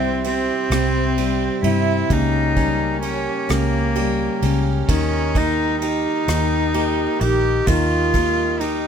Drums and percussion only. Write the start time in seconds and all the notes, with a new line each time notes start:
0.25 ride
0.71 cross-stick, ride
1.18 ride
1.64 ride
2.10 kick, ride
2.57 kick, ride
3.03 ride
3.49 cross-stick, ride
3.96 ride
4.42 ride
4.89 kick, ride
5.35 kick, ride
5.82 ride
6.28 cross-stick, ride
6.74 ride
7.20 ride
7.67 kick, ride
8.14 kick, ride
8.60 ride